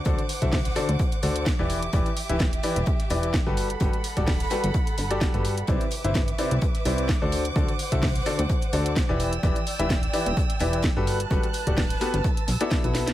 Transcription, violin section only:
Already playing: C5 F#5 D6
1.70 G4 E5
3.57 A4 F#5 B5
5.68 B4 E5 D6
7.32 C5 F#5
9.20 D5 G5 E6
11.07 B4 A5 F#6
12.24 E6

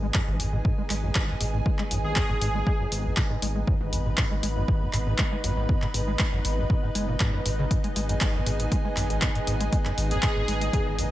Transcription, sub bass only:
Already playing: G#1
0.28 G#1
0.40 G#1
0.90 G#1
1.41 G#1
1.91 G#1
2.29 G#1
2.41 G#1
2.92 G#1
3.42 G#1
3.93 G#1
4.31 G#1
4.43 G#1
4.93 G#1
5.44 G#1
5.94 G#1
6.33 G#1
6.45 G#1
6.95 F#1
7.46 G#1
7.96 G#1
8.35 G#1
8.46 G#1
8.97 G#1
9.47 G#1
9.98 G#1
10.36 G#1
10.48 G#1
10.98 G#1

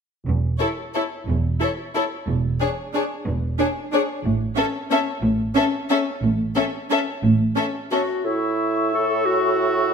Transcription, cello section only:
0.27 E2
1.27 E2
2.28 E2
3.27 E2
4.25 A2
5.23 A2
6.23 A2
7.23 A2

